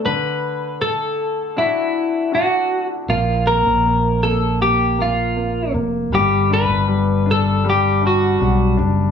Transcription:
0.05 D3 B4
0.82 A4
1.56 D4 E4 F#4
2.32 D4 E4 F#4
3.09 A#1 A#3 F4
3.46 A#3 A#4
3.65 A#1
3.85 A#3
4.23 A#3 A4
4.61 A#3 G4
4.99 A#3 F4
5.37 A#3
5.74 F1 A#3
6.12 G1 G3 G4
6.50 D4 B4
6.69 G1
6.87 G3
7.26 D4
7.31 A4
7.64 G3
7.70 G4
8.02 D4
8.07 F#4
8.40 B1 G3
8.77 F#1 D4

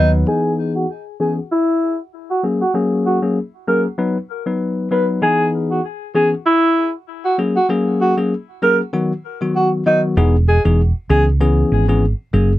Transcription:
Already playing: D#2 F#3 B3 D#4 B4
0.27 E3 B3 D#4 G#4
0.76 F#4
1.20 E3 B3 C#4 G#4
1.52 E4
2.31 F#4
2.43 F#3 A#3 C#4 G#4
2.61 F#4
2.74 F#3 A#3 C#4 G#4
3.06 F#4
3.22 F#3 A#3 C#4 G#4
3.67 F#3 A#3 C#4 G#4 A#4
3.98 F#3 B3 D#4 B4
4.46 F#3 B3 D#4 B4
4.91 F#3 B3 D#4 B4
5.22 E3 B3 D#4 G#4
5.71 F#4
6.15 E3 B3 C#4 G#4
6.46 E4
7.25 F#4
7.38 F#3 A#3 C#4 G#4
7.56 F#4
7.69 F#3 A#3 C#4 G#4
8.01 F#4
8.17 F#3 A#3 C#4 G#4
8.62 F#3 A#3 C#4 G#4 A#4
8.93 D#3 F#3 B3 F#4
9.41 D#3 F#3 B3 F#4
9.56 F#4
9.86 D#3 F#3 B3 D#4 F#4
10.17 E1 E3 B3 D#4 G#4
10.49 G#4
10.65 E1 E3 B3 D#4 G#4
11.10 C#2 E3 B3 C#4 G#4
11.40 E3 B3 C#4 G#4
11.72 G#1
11.89 E3 B3 C#4 G#4
12.33 F#1 F#3 A#3 C#4 G#4

